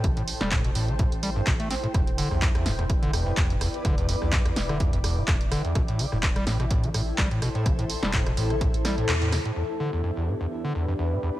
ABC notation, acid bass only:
X:1
M:4/4
L:1/16
Q:"Swing 16ths" 1/4=126
K:Em
V:1 name="Acid bass" clef=bass
D, A,, z G, A,, B,, A,, D, A,, z G, G,, B,, A, C A,, | E,, z D, E,, =F,, E,, A,, E,, z D, E,, F,, E,, A,, E,, z | D, E,, =F,, E,, A,, E,, z D, E,, F,, E,, A,, E,, z D, E,, | B,, A,, D, A,, z G, A,, B,, A,, D, A,, z G, A,, B,, A,, |
D, A,, z G, A,, B,, A,, D, A,, z G, A,, B,, A,, D, A,, | E,, z D, E,, =F,, E,, A,, E,, z D, E,, F,, E,, A,, E,, z |]